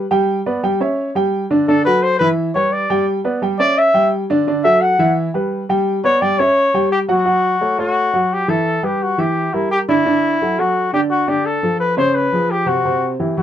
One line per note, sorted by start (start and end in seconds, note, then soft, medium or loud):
0.11 0.39 G3 medium
0.11 0.39 G4 medium
0.11 0.39 G5 loud
0.46 0.60 B3 medium
0.46 0.60 B4 medium
0.46 0.60 D5 medium
0.63 0.77 G3 medium
0.63 0.77 G4 medium
0.63 0.78 G5 medium
0.80 1.09 C#4 medium
0.80 1.09 C#5 medium
0.80 1.09 E5 medium
1.15 1.44 G3 medium
1.15 1.44 G4 medium
1.15 1.44 G5 medium
1.51 1.64 D3 medium
1.51 1.65 D4 medium
1.51 1.65 D5 medium
1.68 1.82 D3 medium
1.68 1.82 D4 medium
1.68 1.84 A4 medium
1.68 1.82 D5 medium
1.85 2.14 F#3 medium
1.85 2.14 F#4 medium
1.85 2.15 A4 medium
1.85 2.04 B4 loud
2.02 2.18 C5 loud
2.19 2.49 E3 medium
2.19 2.49 E4 medium
2.19 2.29 B4 loud
2.19 2.49 E5 medium
2.54 2.83 G3 medium
2.54 2.84 G4 medium
2.54 2.84 B4 medium
2.54 2.74 C#5 medium
2.72 3.07 D5 loud
2.90 3.18 G3 medium
2.90 3.18 G4 medium
2.90 3.18 G5 loud
3.24 3.39 B3 medium
3.24 3.39 B4 medium
3.24 3.39 D5 medium
3.42 3.56 G3 medium
3.42 3.56 G4 medium
3.42 3.57 G5 medium
3.59 3.88 C#4 medium
3.59 3.88 C#5 medium
3.59 3.80 D5 loud
3.59 3.88 E5 medium
3.78 4.12 E5 loud
3.94 4.23 G3 medium
3.94 4.23 G4 medium
3.94 4.23 G5 medium
4.30 4.44 D3 medium
4.30 4.44 D4 loud
4.30 4.44 D5 loud
4.47 4.61 D3 medium
4.47 4.61 D4 medium
4.47 4.62 D5 medium
4.64 4.93 F#3 medium
4.64 4.92 F#4 medium
4.64 4.93 A4 medium
4.64 4.83 E5 loud
4.81 5.16 F#5 medium
4.99 5.27 E3 medium
4.99 5.28 E4 medium
4.99 5.28 E5 medium
5.34 5.63 G3 medium
5.34 5.62 G4 medium
5.34 5.63 B4 medium
5.69 5.98 G3 medium
5.69 5.98 G4 medium
5.69 5.98 G5 medium
6.04 6.18 B3 medium
6.04 6.18 B4 medium
6.04 6.23 C#5 loud
6.04 6.18 D5 medium
6.21 6.36 G3 medium
6.21 6.36 G4 medium
6.21 6.40 D5 loud
6.21 6.36 G5 medium
6.39 6.68 C#4 medium
6.39 6.91 C#5 loud
6.39 6.68 C#5 medium
6.39 6.68 E5 medium
6.74 7.02 G3 medium
6.74 7.03 G4 medium
6.74 7.03 G5 medium
6.92 6.99 G4 loud
7.08 7.23 F#3 medium
7.08 7.23 F#4 medium
7.08 7.75 F#4 loud
7.08 7.23 F#5 medium
7.25 7.54 F#3 medium
7.25 7.54 F#4 medium
7.25 7.54 F#5 medium
7.61 7.75 A3 medium
7.61 7.75 A4 medium
7.61 7.75 C#5 medium
7.78 8.07 A3 medium
7.78 8.34 F#4 medium
7.78 8.07 A4 medium
7.78 8.07 C#5 medium
8.13 8.42 F#3 medium
8.13 8.42 F#4 medium
8.13 8.42 F#5 medium
8.33 8.51 G4 medium
8.48 8.77 E3 medium
8.48 8.77 E4 medium
8.48 8.86 A4 medium
8.48 8.77 E5 medium
8.83 9.12 G3 medium
8.83 9.12 G4 medium
8.83 9.04 G4 medium
8.83 9.12 B4 medium
9.02 9.21 F#4 medium
9.18 9.46 E3 medium
9.18 9.47 E4 medium
9.18 9.55 G4 medium
9.18 9.47 E5 medium
9.53 9.82 G3 medium
9.53 9.70 E4 medium
9.53 9.82 G4 medium
9.53 9.82 A#4 medium
9.71 9.79 G4 loud
9.88 10.02 D3 medium
9.88 10.03 D4 medium
9.88 10.61 E4 loud
9.88 10.03 D5 medium
10.06 10.34 D3 medium
10.06 10.34 D4 medium
10.06 10.34 D5 medium
10.41 10.55 F#3 medium
10.41 10.55 F#4 medium
10.41 10.55 A4 medium
10.59 10.87 F#3 medium
10.59 10.87 F#4 medium
10.59 10.93 F#4 loud
10.59 10.87 A4 medium
10.93 11.21 D3 medium
10.93 11.22 D4 medium
10.93 11.01 G4 medium
10.93 11.22 D5 medium
11.10 11.30 F#4 loud
11.28 11.56 D3 medium
11.28 11.56 D4 medium
11.28 11.47 G4 medium
11.28 11.56 D5 medium
11.45 11.79 A4 loud
11.63 11.91 F3 medium
11.63 11.91 F4 medium
11.63 11.92 A4 medium
11.80 11.96 B4 loud
11.97 12.26 C#3 medium
11.97 12.26 C#4 medium
11.97 12.16 C5 loud
11.97 12.26 C#5 medium
12.15 12.52 B4 loud
12.32 12.61 F3 medium
12.32 12.61 F4 medium
12.32 12.61 G#4 medium
12.51 12.69 G4 loud
12.66 12.81 C3 medium
12.66 12.81 C4 medium
12.66 13.10 F#4 medium
12.66 12.81 C5 medium
12.85 13.13 C3 medium
12.85 13.13 C4 medium
12.85 13.14 C5 medium
13.20 13.34 E3 medium
13.20 13.34 E4 medium
13.20 13.34 G4 medium
13.37 13.43 E3 medium
13.37 13.43 G3 medium
13.37 13.43 E4 medium
13.37 13.43 F#4 loud